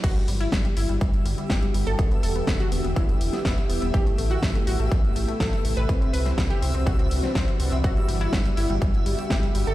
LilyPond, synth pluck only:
\new Staff \with { instrumentName = "Synth pluck" } { \time 4/4 \key g \major \tempo 4 = 123 fis'16 g16 g16 e'16 g16 g16 e'16 g16 g16 r16 g16 g16 g'16 g16 g16 a'16 | b16 b16 a'16 b16 b16 fis'16 b16 b16 e'16 b16 r16 b16 b16 b16 b16 b16 | g'16 a16 a16 fis'16 a16 a16 fis'16 a16 a16 r16 a16 a16 a'16 a16 a16 b'16 | c'16 c'16 b'16 c'16 c'16 g'16 c'16 c'16 fis'16 c'16 r16 c'16 c'16 c'16 c'16 c'16 |
fis'16 g16 g16 e'16 g16 g16 e'16 g16 g16 r16 g16 g16 g'16 g16 g16 a'16 | }